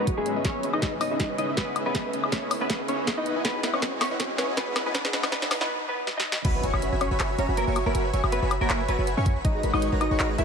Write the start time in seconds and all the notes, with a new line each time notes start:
Already playing: G#2 D#3 A#3 B3 C#4 F#4, riser
0.00 G#3 D#4 F#4 B4 C#5 A#5
0.07 F#4, kick, closed hi-hat
0.17 G#3 C#4 G#4 B4 D#5 E5
0.26 C#3 D#4 E4 C#5, closed hi-hat
0.36 C#4 G#4 B4 D#5 E5
0.45 C#4 G#4 C#5, kick, snare, closed hi-hat
0.55 B4
0.63 C#4 G#4 B4 C#5 D#5 E5, closed hi-hat
0.73 C#4 D#4 G#4 B4 D#5 E5, high woodblock
0.82 G#4, kick, snare, closed hi-hat
0.92 C#4 G#4 B4 D#5 E5
1.01 D#4 C#5 D#5, open hi-hat, high woodblock
1.11 C#4 G#4 B4 D#5 E5
1.20 G#4, kick, snare, closed hi-hat
1.30 B4
1.38 C#4 D#4 G#4 B4 C#5 D#5 E5, closed hi-hat
1.49 C#4 G#4 B4 D#5 E5
1.57 B3 G#4 B4, kick, snare, closed hi-hat
1.67 C#4 G#4 B4 D#5 E5
1.76 C#5, closed hi-hat, high woodblock
1.86 B3 C#4 G#4 B4 D#5 E5
1.95 C#4 G#4 B4 D#5 E5, kick, snare, closed hi-hat
2.05 B4
2.13 C#4 G#4 B4 C#5 D#5 E5, closed hi-hat
2.23 C#4 G#4 B4 D#5 E5, high woodblock
2.32 C#4 C#5, kick, snare, closed hi-hat
2.42 C#4 G#4 B4 D#5 E5
2.51 C#5, open hi-hat, high woodblock
2.61 B3 C#4 G#4 B4 D#5 E5
2.70 G#4 D#5, kick, snare, closed hi-hat
2.80 B4
2.88 C#4 G#4 B4 C#5 D#5 E5, closed hi-hat
2.98 C#4 G#4 B4 D#5 E5
3.07 G#4, kick, snare, closed hi-hat
3.17 D#4 E4 B4 D#5 F#5 B5
3.26 E2 D#3 G#3 F#4 B4, closed hi-hat
3.36 E4 B4 D#5 F#5 G#5
3.45 B3 F#4 B4, kick, snare, closed hi-hat
3.55 G#4
3.63 E4 B4 D#5 F#5 B5, snare, closed hi-hat
3.73 C#4 E4 B4 C#5 D#5 F#5 C#6, high woodblock
3.82 F#4, kick, snare, closed hi-hat
3.92 E4 G#4 B4 D#5 F#5 G#5
4.01 C#4 B4 C#5, snare, open hi-hat, high woodblock
4.11 E4 B4 D#5 F#5 C#6
4.20 E4 F#4 G#5, kick, snare, closed hi-hat
4.30 G#4
4.38 C#4 E4 B4 C#5 D#5 F#5 G#5, snare, closed hi-hat
4.48 E4 B4 D#5 F#5 G#5
4.57 B3 F#4 B4, kick, snare, closed hi-hat
4.67 E4 G#4 B4 D#5 F#5 B5
4.76 B4, snare, closed hi-hat, high woodblock
4.86 B3 E4 B4 D#5 F#5 G#5
4.95 E4 B4 D#5 F#5 G#5, kick, snare, closed hi-hat
5.05 G#4, snare
5.13 E4 B4 D#5 F#5 B5, snare, closed hi-hat
5.23 E4 B4 D#5 F#5 C#6, snare, high woodblock
5.32 B3 F#4 B4, kick, snare, closed hi-hat
5.42 E4 G#4 B4 D#5 F#5 G#5, snare
5.51 B4, snare, open hi-hat, high woodblock
5.61 B3 E4 B4 D#5 F#5 C#6, snare
5.88 B3 B4
6.07 snare
6.17 D#4 D#5, snare
6.32 snare
6.45 F#1 B3 F#4 B4 C#5 E5 G#5 B5, kick, closed hi-hat, crash, impact
6.55 B4
6.63 F#1 F#4 C#5 E5 G#5 C#6, closed hi-hat
6.73 F#1 C#4 F#4 C#5 E5 G#5 B5, high woodblock
6.82 B4, closed hi-hat
6.92 F#1 F#4 C#5 E5 G#5 B5
7.01 C#4 F#4 C#5, closed hi-hat, high woodblock
7.11 F#1 F#4 B4 C#5 E5 G#5 B5
7.20 F#1 F#4 C#5 E5 G#5 B5, clap, closed hi-hat
7.30 B4
7.38 F#1 C#4 F#4 C#5 E5 G#5 A#5, closed hi-hat
7.49 F#1 F#4 C#5 E5 G#5 B5
7.57 A#3 A#4 B4, closed hi-hat
7.67 F#1 F#4 C#5 E5 G#5 C#6
7.76 F#4, closed hi-hat, high woodblock
7.86 F#1 A#3 F#4 A#4 B4 C#5 E5 G#5 B5
7.95 F#1 F#4 C#5 E5 G#5 B5, closed hi-hat
8.05 B4
8.13 F#1 F#4 C#5 E5 G#5 C#6, closed hi-hat
8.23 F#1 F#4 C#5 E5 G#5 B5, high woodblock
8.32 B3 B4, closed hi-hat
8.42 F#1 F#4 C#5 E5 G#5 B5
8.51 F#4, closed hi-hat, high woodblock
8.61 F#1 A#3 F#4 A#4 B4 C#5 E5 G#5 B5
8.70 F#1 F#4 C#5 E5 B5, clap, closed hi-hat
8.80 B4
8.88 F#1 B3 F#4 B4 C#5 E5 G#5 A#5, closed hi-hat
8.98 F#1 F#4 C#5 E5 G#5 B5
9.07 B4, closed hi-hat
9.17 F#2 C#4 F#4 C#5 E5 G#5 C#6
9.26 F#4, kick, closed hi-hat
9.36 F#1 F#4 B4 C#5 E5 G#5 B5
9.44 G#1 G#3 D#4 F#4 B4 C#5 D#5 A#5, kick, closed hi-hat
9.55 G#4
9.63 G#1 G#3 D#4 F#4 A#4 B4 C#5 B5, closed hi-hat
9.73 G#1 G#3 D#4 F#4 B4 C#5 D#5 C#6, high woodblock
9.82 G#4, closed hi-hat
9.92 G#1 G#3 D#4 F#4 A#4 B4 C#5 A#5
10.01 D#4 F#4 D#5, closed hi-hat, high woodblock
10.11 G#1 G#3 D#4 F#4 G#4 B4 C#5 C#6
10.20 G#1 G#3 D#4 F#4 B4 C#5 A#5, clap, closed hi-hat
10.30 G#4
10.38 G#1 G#3 D#4 E4 F#4 A#4 B4 C#5 E5 G#5, closed hi-hat